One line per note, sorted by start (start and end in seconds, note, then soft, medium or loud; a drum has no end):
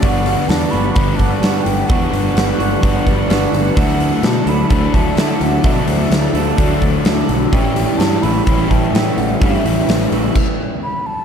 0.00 0.35 G1 loud
0.00 0.95 G2 medium
0.00 0.95 D3 loud
0.00 0.73 G3 medium
0.00 0.97 G3 loud
0.00 0.73 B3 medium
0.00 3.73 D4 medium
0.00 0.72 D4 loud
0.00 3.73 B4 medium
0.00 0.50 F#5 medium
0.00 7.49 F#5 medium
0.00 kick loud
0.00 open hi-hat medium
0.04 0.98 B3 medium
0.04 0.99 D4 loud
0.04 0.71 F#4 medium
0.26 open hi-hat medium
0.48 0.65 E2 medium
0.48 0.72 A5 medium
0.48 snare loud
0.48 open hi-hat medium
0.71 0.89 G1 medium
0.71 1.41 G3 medium
0.71 1.41 B3 medium
0.71 1.43 D4 medium
0.71 1.44 F#4 medium
0.71 0.93 B5 loud
0.71 open hi-hat soft
0.93 1.12 G1 medium
0.93 1.87 G2 medium
0.93 1.88 D3 medium
0.93 1.17 B5 loud
0.93 kick loud
0.93 open hi-hat medium
0.98 1.88 G3 medium
0.98 1.89 B3 medium
0.98 1.91 D4 medium
1.16 1.35 G1 medium
1.16 1.39 A5 medium
1.16 kick medium
1.16 open hi-hat soft
1.39 1.59 G2 medium
1.39 1.87 G3 medium
1.39 1.88 B3 medium
1.39 1.64 A5 medium
1.39 open hi-hat medium
1.44 1.90 D4 medium
1.44 1.91 F#4 medium
1.44 snare loud
1.62 1.82 G1 medium
1.62 1.87 G5 loud
1.62 open hi-hat medium
1.86 2.06 E2 loud
1.86 2.80 G2 loud
1.86 2.81 D3 loud
1.86 2.58 G3 medium
1.86 2.82 G3 loud
1.86 2.59 B3 loud
1.86 2.58 F#5 medium
1.86 kick loud
1.86 open hi-hat medium
1.90 2.82 B3 loud
1.90 2.59 D4 loud
1.90 2.84 D4 medium
1.90 2.58 F#4 loud
2.13 2.29 G1 medium
2.13 open hi-hat medium
2.35 2.52 G1 medium
2.35 snare loud
2.35 open hi-hat medium
2.59 2.75 G1 medium
2.59 3.27 G3 medium
2.59 3.29 B3 medium
2.59 3.30 D4 medium
2.59 3.31 F#4 medium
2.59 open hi-hat medium
2.81 2.99 G1 medium
2.81 3.75 G2 medium
2.81 3.74 D3 medium
2.81 3.76 G3 medium
2.81 3.76 B3 medium
2.81 3.79 D4 medium
2.81 kick loud
2.81 open hi-hat medium
3.06 3.23 G1 medium
3.06 kick medium
3.06 open hi-hat soft
3.29 3.46 G1 medium
3.29 3.75 G3 medium
3.29 3.75 B3 medium
3.29 3.78 D4 medium
3.29 3.78 F#4 medium
3.29 snare loud
3.29 open hi-hat medium
3.53 3.69 G1 medium
3.53 open hi-hat medium
3.76 4.09 D2 loud
3.76 4.69 D3 medium
3.76 4.49 D3 medium
3.76 4.48 F#3 medium
3.76 4.71 F#3 medium
3.76 4.48 A3 loud
3.76 4.72 A3 loud
3.76 7.49 D4 medium
3.76 4.47 D4 medium
3.76 4.73 D4 loud
3.76 4.47 E4 medium
3.76 7.49 A4 medium
3.76 5.63 E5 medium
3.76 4.26 F#5 loud
3.76 kick loud
3.76 open hi-hat medium
4.00 open hi-hat medium
4.23 4.39 B2 medium
4.23 4.51 A5 medium
4.23 snare loud
4.23 open hi-hat medium
4.46 4.63 D2 medium
4.46 5.16 D3 medium
4.46 5.17 F#3 medium
4.46 5.18 A3 medium
4.46 5.17 D4 medium
4.46 5.19 E4 medium
4.46 4.71 B5 loud
4.46 open hi-hat soft
4.69 4.87 D2 medium
4.69 5.62 D3 medium
4.69 5.63 F#3 medium
4.69 5.65 A3 medium
4.69 5.64 D4 medium
4.69 4.96 B5 loud
4.69 kick medium
4.69 open hi-hat medium
4.94 5.10 D2 medium
4.94 5.18 A5 medium
4.94 kick medium
4.94 open hi-hat medium
5.17 5.62 D3 medium
5.17 5.33 D3 medium
5.17 5.63 F#3 medium
5.17 5.64 A3 medium
5.17 5.64 D4 medium
5.17 5.65 E4 medium
5.17 5.45 A5 medium
5.17 snare loud
5.17 open hi-hat medium
5.41 5.57 D2 medium
5.41 5.67 F#5 medium
5.41 open hi-hat medium
5.63 5.80 B2 loud
5.63 6.33 D3 medium
5.63 6.56 D3 loud
5.63 6.33 F#3 medium
5.63 6.57 F#3 medium
5.63 6.36 A3 loud
5.63 6.59 A3 loud
5.63 6.34 D4 loud
5.63 6.58 D4 loud
5.63 6.34 E4 medium
5.63 7.51 D5 medium
5.63 6.36 E5 medium
5.63 kick loud
5.63 open hi-hat medium
5.88 6.04 D2 medium
5.88 open hi-hat medium
6.11 6.27 D2 medium
6.11 snare loud
6.11 open hi-hat medium
6.34 6.50 D2 medium
6.34 7.04 D3 medium
6.34 7.05 F#3 medium
6.34 7.06 A3 medium
6.34 7.04 D4 medium
6.34 7.07 E4 medium
6.34 open hi-hat medium
6.57 6.74 D2 medium
6.57 7.51 D3 medium
6.57 7.51 F#3 medium
6.57 7.54 A3 medium
6.57 7.52 D4 medium
6.57 kick medium
6.57 open hi-hat medium
6.82 6.98 D2 medium
6.82 kick medium
6.82 open hi-hat soft
7.05 7.21 D2 medium
7.05 7.51 D3 medium
7.05 7.52 F#3 medium
7.05 7.53 A3 medium
7.05 7.52 D4 medium
7.05 7.54 E4 medium
7.05 snare loud
7.05 open hi-hat medium
7.29 7.45 B1 medium
7.29 open hi-hat medium
7.51 7.85 A1 medium
7.51 8.46 A2 medium
7.51 8.25 A2 medium
7.51 8.46 E3 loud
7.51 8.25 E3 medium
7.51 8.48 G3 loud
7.51 8.24 G3 medium
7.51 10.31 C#4 medium
7.51 8.48 C#4 loud
7.51 8.24 C#4 medium
7.51 8.23 E4 loud
7.51 10.32 A4 medium
7.51 10.32 E5 medium
7.51 10.32 G5 medium
7.51 7.99 G5 medium
7.51 kick loud
7.51 open hi-hat medium
7.55 8.49 E4 loud
7.76 open hi-hat medium
7.98 8.15 G2 medium
7.98 8.24 A5 loud
7.98 snare loud
7.98 open hi-hat medium
8.22 8.40 A1 medium
8.22 8.93 A2 medium
8.22 8.93 E3 medium
8.22 8.93 G3 medium
8.22 8.93 C#4 medium
8.22 8.92 E4 medium
8.22 8.45 B5 medium
8.22 open hi-hat medium
8.46 8.63 A1 medium
8.46 9.39 A2 medium
8.46 9.40 E3 medium
8.46 9.40 G3 medium
8.46 9.41 C#4 medium
8.46 9.41 E4 loud
8.46 8.72 B5 loud
8.46 kick loud
8.46 open hi-hat medium
8.70 8.87 A1 medium
8.70 8.95 A5 medium
8.70 kick medium
8.70 open hi-hat soft
8.93 9.10 A2 medium
8.93 9.40 A2 medium
8.93 9.40 E3 medium
8.93 9.40 G3 medium
8.93 9.41 C#4 medium
8.93 9.41 E4 medium
8.93 9.19 G5 medium
8.93 snare loud
8.93 open hi-hat medium
9.17 9.34 A1 medium
9.17 9.40 F#5 medium
9.17 open hi-hat medium
9.40 9.57 G2 loud
9.40 10.33 A2 medium
9.40 10.10 A2 medium
9.40 10.34 E3 medium
9.40 10.11 E3 medium
9.40 10.34 G3 loud
9.40 10.11 G3 medium
9.40 10.35 C#4 loud
9.40 10.11 C#4 loud
9.40 10.11 E4 medium
9.40 10.07 E5 medium
9.40 kick loud
9.40 open hi-hat medium
9.44 10.35 E4 medium
9.65 9.81 A1 medium
9.65 open hi-hat medium
9.89 10.05 A1 medium
9.89 snare loud
9.89 open hi-hat medium
10.12 10.28 A1 medium
10.12 10.35 A2 medium
10.12 10.35 E3 medium
10.12 10.35 G3 medium
10.12 10.35 C#4 medium
10.12 10.34 E4 medium
10.12 open hi-hat medium
10.35 kick medium
10.35 crash medium
10.84 11.08 B5 loud
11.06 11.25 A5 medium